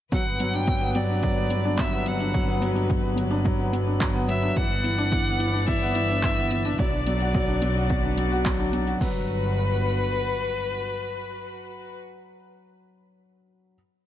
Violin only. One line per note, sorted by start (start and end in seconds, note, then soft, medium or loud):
0.13 0.57 F#5 loud
0.55 0.98 G5 loud
0.96 1.82 D5 loud
1.80 2.09 E5 medium
2.07 2.63 F#5 loud
4.28 4.58 E5 loud
4.56 5.68 F#5 loud
5.67 6.80 E5 loud
6.78 8.45 D5 loud
9.01 11.99 B4 loud